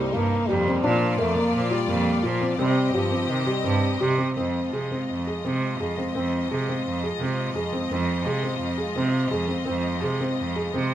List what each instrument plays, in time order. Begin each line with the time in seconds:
Already playing: french horn G3, string section A#3 D#4 C5, felt piano G4
0.13 cello G2, french horn A#3, felt piano A#3
0.48 cello F2, french horn G3, felt piano G4
0.68 felt piano C4
0.83 cello A#2, french horn F3, felt piano D4, string section F4 D5
1.18 cello F2, french horn A3, felt piano A#4
1.35 felt piano A#3, french horn A#3
1.55 cello A#2, french horn F3
1.71 french horn G3, felt piano F4
1.88 cello F2, felt piano A#3
2.23 cello A#2, french horn F3, felt piano F4
2.40 felt piano C4
2.58 cello C3, french horn G3, felt piano C4, string section C4 G4 D#5
2.94 cello G2, french horn F3, felt piano G4
3.11 felt piano C4
3.29 cello C3, french horn D#3
3.47 french horn G3, felt piano G4
3.64 cello G2, felt piano C4
4.01 cello C3, felt piano G4
4.18 felt piano C4
4.37 cello F2, string section G#3 F4 D#5, felt piano C4
4.73 cello C3, felt piano G#4
4.91 felt piano C4
5.10 cello F2
5.27 felt piano G#4
5.45 cello C3, felt piano C4
5.80 cello F2, felt piano G#4
5.98 felt piano C4
6.15 cello F2, felt piano C4
6.51 cello C3, felt piano G#4
6.69 felt piano C4
6.86 cello F2
7.04 felt piano G#4
7.20 cello C3, felt piano C4
7.55 cello F2, felt piano G#4
7.73 felt piano C4
7.90 cello F2, felt piano C4
8.25 cello C3, felt piano G#4
8.43 felt piano C4
8.60 cello F2
8.78 felt piano G#4
8.96 cello C3, felt piano C4
9.31 cello F2, felt piano G#4
9.47 felt piano C4
9.65 cello F2, felt piano C4
10.02 cello C3, felt piano G#4
10.20 felt piano C4
10.40 cello F2
10.56 felt piano G#4
10.74 cello C3, felt piano C4